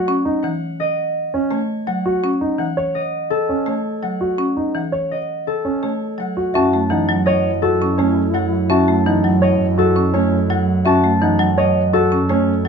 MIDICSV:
0, 0, Header, 1, 7, 480
1, 0, Start_track
1, 0, Tempo, 359281
1, 103, Time_signature, 6, 2, 24, 8
1, 16943, End_track
2, 0, Start_track
2, 0, Title_t, "Celesta"
2, 0, Program_c, 0, 8
2, 8737, Note_on_c, 0, 76, 62
2, 9053, Note_off_c, 0, 76, 0
2, 11621, Note_on_c, 0, 76, 59
2, 11934, Note_off_c, 0, 76, 0
2, 14495, Note_on_c, 0, 76, 63
2, 14812, Note_off_c, 0, 76, 0
2, 16943, End_track
3, 0, Start_track
3, 0, Title_t, "Harp"
3, 0, Program_c, 1, 46
3, 0, Note_on_c, 1, 73, 61
3, 0, Note_on_c, 1, 75, 57
3, 0, Note_on_c, 1, 78, 65
3, 552, Note_off_c, 1, 78, 0
3, 568, Note_on_c, 1, 78, 61
3, 1050, Note_off_c, 1, 75, 0
3, 1066, Note_on_c, 1, 75, 62
3, 1995, Note_off_c, 1, 73, 0
3, 2011, Note_on_c, 1, 73, 58
3, 2481, Note_off_c, 1, 78, 0
3, 2497, Note_on_c, 1, 78, 66
3, 3445, Note_off_c, 1, 78, 0
3, 3461, Note_on_c, 1, 78, 60
3, 3922, Note_off_c, 1, 75, 0
3, 3938, Note_on_c, 1, 75, 54
3, 4413, Note_on_c, 1, 69, 67
3, 4884, Note_off_c, 1, 73, 0
3, 4900, Note_on_c, 1, 73, 56
3, 5368, Note_off_c, 1, 78, 0
3, 5384, Note_on_c, 1, 78, 56
3, 6334, Note_off_c, 1, 78, 0
3, 6350, Note_on_c, 1, 78, 46
3, 6815, Note_off_c, 1, 75, 0
3, 6831, Note_on_c, 1, 75, 50
3, 7294, Note_off_c, 1, 69, 0
3, 7310, Note_on_c, 1, 69, 62
3, 7766, Note_off_c, 1, 73, 0
3, 7782, Note_on_c, 1, 73, 53
3, 8260, Note_off_c, 1, 78, 0
3, 8276, Note_on_c, 1, 78, 53
3, 8754, Note_on_c, 1, 81, 73
3, 8766, Note_off_c, 1, 75, 0
3, 9206, Note_off_c, 1, 78, 0
3, 9222, Note_on_c, 1, 78, 59
3, 9694, Note_on_c, 1, 75, 58
3, 10164, Note_off_c, 1, 69, 0
3, 10180, Note_on_c, 1, 69, 73
3, 10641, Note_off_c, 1, 73, 0
3, 10657, Note_on_c, 1, 73, 61
3, 11121, Note_off_c, 1, 78, 0
3, 11137, Note_on_c, 1, 78, 61
3, 11604, Note_off_c, 1, 81, 0
3, 11620, Note_on_c, 1, 81, 70
3, 12087, Note_off_c, 1, 78, 0
3, 12103, Note_on_c, 1, 78, 63
3, 12577, Note_off_c, 1, 75, 0
3, 12593, Note_on_c, 1, 75, 57
3, 13054, Note_off_c, 1, 69, 0
3, 13070, Note_on_c, 1, 69, 71
3, 13534, Note_off_c, 1, 73, 0
3, 13550, Note_on_c, 1, 73, 63
3, 14008, Note_off_c, 1, 78, 0
3, 14024, Note_on_c, 1, 78, 64
3, 14500, Note_off_c, 1, 81, 0
3, 14516, Note_on_c, 1, 81, 83
3, 14979, Note_off_c, 1, 78, 0
3, 14995, Note_on_c, 1, 78, 61
3, 15453, Note_off_c, 1, 75, 0
3, 15469, Note_on_c, 1, 75, 60
3, 15926, Note_off_c, 1, 69, 0
3, 15942, Note_on_c, 1, 69, 76
3, 16412, Note_off_c, 1, 73, 0
3, 16428, Note_on_c, 1, 73, 62
3, 16897, Note_off_c, 1, 78, 0
3, 16943, Note_off_c, 1, 69, 0
3, 16943, Note_off_c, 1, 73, 0
3, 16943, Note_off_c, 1, 75, 0
3, 16943, Note_off_c, 1, 81, 0
3, 16943, End_track
4, 0, Start_track
4, 0, Title_t, "Grand piano"
4, 0, Program_c, 2, 0
4, 0, Note_on_c, 2, 66, 65
4, 175, Note_off_c, 2, 66, 0
4, 337, Note_on_c, 2, 63, 60
4, 653, Note_off_c, 2, 63, 0
4, 1788, Note_on_c, 2, 61, 60
4, 2097, Note_off_c, 2, 61, 0
4, 2747, Note_on_c, 2, 66, 60
4, 3056, Note_off_c, 2, 66, 0
4, 3221, Note_on_c, 2, 63, 56
4, 3534, Note_off_c, 2, 63, 0
4, 3702, Note_on_c, 2, 73, 68
4, 4015, Note_off_c, 2, 73, 0
4, 4665, Note_on_c, 2, 61, 50
4, 4976, Note_off_c, 2, 61, 0
4, 5621, Note_on_c, 2, 66, 55
4, 5934, Note_off_c, 2, 66, 0
4, 6101, Note_on_c, 2, 63, 50
4, 6414, Note_off_c, 2, 63, 0
4, 6577, Note_on_c, 2, 73, 60
4, 6893, Note_off_c, 2, 73, 0
4, 7546, Note_on_c, 2, 61, 50
4, 7856, Note_off_c, 2, 61, 0
4, 8508, Note_on_c, 2, 66, 52
4, 8731, Note_off_c, 2, 66, 0
4, 8751, Note_on_c, 2, 66, 57
4, 9058, Note_off_c, 2, 66, 0
4, 9228, Note_on_c, 2, 63, 58
4, 9537, Note_off_c, 2, 63, 0
4, 9708, Note_on_c, 2, 73, 73
4, 10017, Note_off_c, 2, 73, 0
4, 10189, Note_on_c, 2, 66, 56
4, 10497, Note_off_c, 2, 66, 0
4, 10663, Note_on_c, 2, 61, 61
4, 10975, Note_off_c, 2, 61, 0
4, 11621, Note_on_c, 2, 66, 61
4, 11934, Note_off_c, 2, 66, 0
4, 12107, Note_on_c, 2, 63, 59
4, 12416, Note_off_c, 2, 63, 0
4, 12583, Note_on_c, 2, 73, 73
4, 12895, Note_off_c, 2, 73, 0
4, 13062, Note_on_c, 2, 66, 61
4, 13375, Note_off_c, 2, 66, 0
4, 13541, Note_on_c, 2, 61, 62
4, 13854, Note_off_c, 2, 61, 0
4, 14501, Note_on_c, 2, 66, 64
4, 14814, Note_off_c, 2, 66, 0
4, 14985, Note_on_c, 2, 63, 65
4, 15296, Note_off_c, 2, 63, 0
4, 15466, Note_on_c, 2, 73, 75
4, 15776, Note_off_c, 2, 73, 0
4, 15943, Note_on_c, 2, 66, 61
4, 16255, Note_off_c, 2, 66, 0
4, 16430, Note_on_c, 2, 61, 63
4, 16738, Note_off_c, 2, 61, 0
4, 16943, End_track
5, 0, Start_track
5, 0, Title_t, "Alto flute"
5, 0, Program_c, 3, 73
5, 8756, Note_on_c, 3, 64, 62
5, 14216, Note_off_c, 3, 64, 0
5, 16943, End_track
6, 0, Start_track
6, 0, Title_t, "Marimba"
6, 0, Program_c, 4, 12
6, 108, Note_on_c, 4, 61, 75
6, 417, Note_off_c, 4, 61, 0
6, 588, Note_on_c, 4, 52, 61
6, 897, Note_off_c, 4, 52, 0
6, 2012, Note_on_c, 4, 57, 60
6, 2331, Note_off_c, 4, 57, 0
6, 2501, Note_on_c, 4, 54, 62
6, 2814, Note_off_c, 4, 54, 0
6, 2988, Note_on_c, 4, 61, 71
6, 3297, Note_off_c, 4, 61, 0
6, 3452, Note_on_c, 4, 52, 56
6, 3771, Note_off_c, 4, 52, 0
6, 4893, Note_on_c, 4, 57, 52
6, 5211, Note_off_c, 4, 57, 0
6, 5379, Note_on_c, 4, 54, 51
6, 5694, Note_off_c, 4, 54, 0
6, 5856, Note_on_c, 4, 61, 64
6, 6173, Note_off_c, 4, 61, 0
6, 6342, Note_on_c, 4, 52, 51
6, 6655, Note_off_c, 4, 52, 0
6, 7788, Note_on_c, 4, 57, 49
6, 8097, Note_off_c, 4, 57, 0
6, 8256, Note_on_c, 4, 54, 49
6, 8572, Note_off_c, 4, 54, 0
6, 8755, Note_on_c, 4, 61, 73
6, 8998, Note_on_c, 4, 57, 60
6, 9059, Note_off_c, 4, 61, 0
6, 9219, Note_on_c, 4, 52, 62
6, 9300, Note_off_c, 4, 57, 0
6, 9469, Note_on_c, 4, 54, 72
6, 9534, Note_off_c, 4, 52, 0
6, 9777, Note_off_c, 4, 54, 0
6, 10443, Note_on_c, 4, 61, 59
6, 10673, Note_on_c, 4, 57, 62
6, 10742, Note_off_c, 4, 61, 0
6, 10979, Note_off_c, 4, 57, 0
6, 11150, Note_on_c, 4, 54, 60
6, 11457, Note_off_c, 4, 54, 0
6, 11620, Note_on_c, 4, 61, 78
6, 11862, Note_on_c, 4, 57, 63
6, 11934, Note_off_c, 4, 61, 0
6, 12109, Note_on_c, 4, 52, 61
6, 12175, Note_off_c, 4, 57, 0
6, 12346, Note_on_c, 4, 54, 72
6, 12417, Note_off_c, 4, 52, 0
6, 12656, Note_off_c, 4, 54, 0
6, 13307, Note_on_c, 4, 61, 60
6, 13545, Note_on_c, 4, 57, 66
6, 13617, Note_off_c, 4, 61, 0
6, 13856, Note_off_c, 4, 57, 0
6, 14029, Note_on_c, 4, 54, 66
6, 14337, Note_off_c, 4, 54, 0
6, 14503, Note_on_c, 4, 61, 77
6, 14747, Note_on_c, 4, 57, 64
6, 14815, Note_off_c, 4, 61, 0
6, 14985, Note_on_c, 4, 52, 64
6, 15056, Note_off_c, 4, 57, 0
6, 15219, Note_on_c, 4, 54, 85
6, 15296, Note_off_c, 4, 52, 0
6, 15534, Note_off_c, 4, 54, 0
6, 16191, Note_on_c, 4, 61, 64
6, 16425, Note_on_c, 4, 57, 65
6, 16498, Note_off_c, 4, 61, 0
6, 16736, Note_off_c, 4, 57, 0
6, 16901, Note_on_c, 4, 54, 66
6, 16943, Note_off_c, 4, 54, 0
6, 16943, End_track
7, 0, Start_track
7, 0, Title_t, "Double bass"
7, 0, Program_c, 5, 43
7, 8742, Note_on_c, 5, 42, 61
7, 16943, Note_off_c, 5, 42, 0
7, 16943, End_track
0, 0, End_of_file